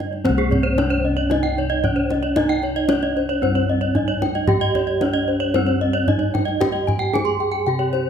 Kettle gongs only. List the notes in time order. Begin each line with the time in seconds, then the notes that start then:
Already playing: G2
0.24 C4
0.29 C2
0.78 C#4
1.84 C#4
2.36 D#4
2.89 C#4
3.43 G2
3.96 C#4
4.49 G4
5.01 C#4
5.54 G2
6.07 C#4
6.60 G4
7.13 C#4
7.67 C3